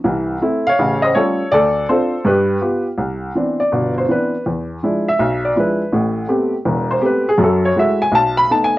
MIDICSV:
0, 0, Header, 1, 2, 480
1, 0, Start_track
1, 0, Key_signature, 0, "major"
1, 0, Tempo, 366972
1, 59, Time_signature, 4, 2, 24, 8
1, 11489, End_track
2, 0, Start_track
2, 0, Title_t, "Upright piano"
2, 0, Program_c, 0, 0
2, 56, Note_on_c, 0, 52, 71
2, 60, Note_on_c, 0, 36, 71
2, 472, Note_off_c, 0, 52, 0
2, 474, Note_off_c, 0, 36, 0
2, 540, Note_on_c, 0, 60, 50
2, 541, Note_on_c, 0, 57, 54
2, 549, Note_on_c, 0, 64, 63
2, 867, Note_off_c, 0, 57, 0
2, 867, Note_off_c, 0, 60, 0
2, 870, Note_on_c, 0, 77, 113
2, 871, Note_off_c, 0, 64, 0
2, 903, Note_on_c, 0, 73, 76
2, 1032, Note_on_c, 0, 33, 76
2, 1035, Note_on_c, 0, 49, 74
2, 1324, Note_off_c, 0, 73, 0
2, 1336, Note_on_c, 0, 75, 89
2, 1354, Note_off_c, 0, 77, 0
2, 1359, Note_on_c, 0, 72, 70
2, 1441, Note_off_c, 0, 33, 0
2, 1442, Note_off_c, 0, 49, 0
2, 1491, Note_off_c, 0, 75, 0
2, 1499, Note_on_c, 0, 73, 90
2, 1503, Note_off_c, 0, 72, 0
2, 1509, Note_on_c, 0, 55, 56
2, 1517, Note_on_c, 0, 57, 48
2, 1521, Note_on_c, 0, 65, 60
2, 1522, Note_on_c, 0, 61, 53
2, 1525, Note_on_c, 0, 69, 70
2, 1831, Note_off_c, 0, 55, 0
2, 1835, Note_off_c, 0, 57, 0
2, 1837, Note_off_c, 0, 65, 0
2, 1838, Note_off_c, 0, 61, 0
2, 1946, Note_off_c, 0, 73, 0
2, 1960, Note_off_c, 0, 69, 0
2, 1983, Note_on_c, 0, 74, 102
2, 1988, Note_on_c, 0, 38, 70
2, 2011, Note_on_c, 0, 69, 78
2, 2399, Note_off_c, 0, 38, 0
2, 2428, Note_off_c, 0, 74, 0
2, 2443, Note_off_c, 0, 69, 0
2, 2473, Note_on_c, 0, 72, 84
2, 2474, Note_on_c, 0, 60, 59
2, 2475, Note_on_c, 0, 62, 50
2, 2481, Note_on_c, 0, 65, 62
2, 2493, Note_on_c, 0, 69, 62
2, 2794, Note_off_c, 0, 60, 0
2, 2794, Note_off_c, 0, 62, 0
2, 2797, Note_off_c, 0, 65, 0
2, 2913, Note_off_c, 0, 72, 0
2, 2924, Note_off_c, 0, 69, 0
2, 2939, Note_on_c, 0, 43, 77
2, 2962, Note_on_c, 0, 71, 78
2, 2984, Note_on_c, 0, 67, 60
2, 3354, Note_off_c, 0, 43, 0
2, 3403, Note_off_c, 0, 67, 0
2, 3422, Note_on_c, 0, 65, 52
2, 3423, Note_on_c, 0, 67, 56
2, 3424, Note_on_c, 0, 59, 49
2, 3689, Note_off_c, 0, 71, 0
2, 3748, Note_off_c, 0, 59, 0
2, 3748, Note_off_c, 0, 65, 0
2, 3748, Note_off_c, 0, 67, 0
2, 3895, Note_on_c, 0, 36, 63
2, 4312, Note_off_c, 0, 36, 0
2, 4387, Note_on_c, 0, 52, 50
2, 4393, Note_on_c, 0, 59, 42
2, 4398, Note_on_c, 0, 60, 50
2, 4404, Note_on_c, 0, 62, 54
2, 4709, Note_on_c, 0, 74, 72
2, 4710, Note_off_c, 0, 52, 0
2, 4713, Note_off_c, 0, 59, 0
2, 4716, Note_off_c, 0, 60, 0
2, 4719, Note_off_c, 0, 62, 0
2, 4866, Note_on_c, 0, 47, 67
2, 4869, Note_on_c, 0, 31, 72
2, 5147, Note_off_c, 0, 74, 0
2, 5206, Note_on_c, 0, 72, 73
2, 5278, Note_off_c, 0, 47, 0
2, 5280, Note_off_c, 0, 31, 0
2, 5345, Note_on_c, 0, 59, 49
2, 5348, Note_on_c, 0, 52, 50
2, 5354, Note_off_c, 0, 72, 0
2, 5355, Note_on_c, 0, 60, 42
2, 5355, Note_on_c, 0, 62, 55
2, 5380, Note_on_c, 0, 71, 68
2, 5669, Note_off_c, 0, 59, 0
2, 5671, Note_off_c, 0, 52, 0
2, 5675, Note_off_c, 0, 60, 0
2, 5675, Note_off_c, 0, 62, 0
2, 5808, Note_off_c, 0, 71, 0
2, 5836, Note_on_c, 0, 40, 62
2, 6243, Note_off_c, 0, 40, 0
2, 6315, Note_on_c, 0, 53, 49
2, 6324, Note_on_c, 0, 56, 46
2, 6326, Note_on_c, 0, 62, 50
2, 6326, Note_on_c, 0, 64, 58
2, 6635, Note_off_c, 0, 53, 0
2, 6639, Note_off_c, 0, 56, 0
2, 6640, Note_off_c, 0, 62, 0
2, 6640, Note_off_c, 0, 64, 0
2, 6650, Note_on_c, 0, 76, 87
2, 6794, Note_on_c, 0, 35, 75
2, 7078, Note_off_c, 0, 76, 0
2, 7127, Note_on_c, 0, 74, 70
2, 7203, Note_off_c, 0, 35, 0
2, 7270, Note_on_c, 0, 53, 50
2, 7274, Note_off_c, 0, 74, 0
2, 7279, Note_on_c, 0, 62, 49
2, 7280, Note_on_c, 0, 56, 43
2, 7283, Note_on_c, 0, 64, 57
2, 7315, Note_on_c, 0, 71, 68
2, 7592, Note_off_c, 0, 53, 0
2, 7597, Note_off_c, 0, 56, 0
2, 7597, Note_off_c, 0, 62, 0
2, 7599, Note_off_c, 0, 64, 0
2, 7736, Note_off_c, 0, 71, 0
2, 7747, Note_on_c, 0, 33, 65
2, 7752, Note_on_c, 0, 45, 73
2, 8159, Note_off_c, 0, 33, 0
2, 8161, Note_off_c, 0, 45, 0
2, 8216, Note_on_c, 0, 57, 53
2, 8223, Note_on_c, 0, 59, 49
2, 8225, Note_on_c, 0, 60, 50
2, 8230, Note_on_c, 0, 67, 60
2, 8545, Note_off_c, 0, 57, 0
2, 8548, Note_off_c, 0, 59, 0
2, 8550, Note_off_c, 0, 60, 0
2, 8552, Note_off_c, 0, 67, 0
2, 8703, Note_on_c, 0, 28, 73
2, 8705, Note_on_c, 0, 40, 70
2, 9035, Note_on_c, 0, 72, 80
2, 9116, Note_off_c, 0, 28, 0
2, 9117, Note_off_c, 0, 40, 0
2, 9168, Note_on_c, 0, 57, 47
2, 9172, Note_on_c, 0, 59, 45
2, 9173, Note_on_c, 0, 60, 44
2, 9175, Note_on_c, 0, 67, 61
2, 9188, Note_off_c, 0, 72, 0
2, 9229, Note_on_c, 0, 71, 70
2, 9501, Note_off_c, 0, 57, 0
2, 9503, Note_off_c, 0, 59, 0
2, 9503, Note_off_c, 0, 60, 0
2, 9504, Note_off_c, 0, 67, 0
2, 9506, Note_off_c, 0, 71, 0
2, 9532, Note_on_c, 0, 68, 87
2, 9652, Note_on_c, 0, 42, 71
2, 9657, Note_on_c, 0, 54, 68
2, 9677, Note_off_c, 0, 68, 0
2, 9726, Note_on_c, 0, 69, 72
2, 9994, Note_off_c, 0, 69, 0
2, 10011, Note_on_c, 0, 73, 82
2, 10070, Note_off_c, 0, 42, 0
2, 10073, Note_off_c, 0, 54, 0
2, 10150, Note_on_c, 0, 57, 44
2, 10152, Note_on_c, 0, 56, 52
2, 10156, Note_off_c, 0, 73, 0
2, 10163, Note_on_c, 0, 64, 46
2, 10163, Note_on_c, 0, 66, 63
2, 10193, Note_on_c, 0, 76, 77
2, 10467, Note_off_c, 0, 76, 0
2, 10471, Note_off_c, 0, 57, 0
2, 10472, Note_off_c, 0, 56, 0
2, 10478, Note_off_c, 0, 64, 0
2, 10478, Note_off_c, 0, 66, 0
2, 10488, Note_on_c, 0, 80, 93
2, 10618, Note_on_c, 0, 35, 72
2, 10634, Note_off_c, 0, 80, 0
2, 10661, Note_on_c, 0, 81, 97
2, 10941, Note_off_c, 0, 81, 0
2, 10953, Note_on_c, 0, 83, 106
2, 11033, Note_off_c, 0, 35, 0
2, 11106, Note_off_c, 0, 83, 0
2, 11118, Note_on_c, 0, 57, 47
2, 11123, Note_on_c, 0, 59, 46
2, 11131, Note_on_c, 0, 63, 57
2, 11140, Note_on_c, 0, 81, 85
2, 11275, Note_off_c, 0, 81, 0
2, 11303, Note_on_c, 0, 80, 93
2, 11435, Note_off_c, 0, 57, 0
2, 11436, Note_off_c, 0, 80, 0
2, 11437, Note_off_c, 0, 59, 0
2, 11441, Note_off_c, 0, 63, 0
2, 11489, End_track
0, 0, End_of_file